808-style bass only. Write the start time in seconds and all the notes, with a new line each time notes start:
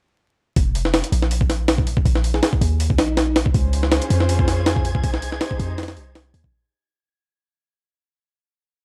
0.56 F1
1.12 A#1
2.05 A#1
2.61 D#2
2.99 A#1
3.54 C#2
4.10 F2
5.04 C2
5.59 F2
5.97 C2
6.34 D#2
6.44 A#1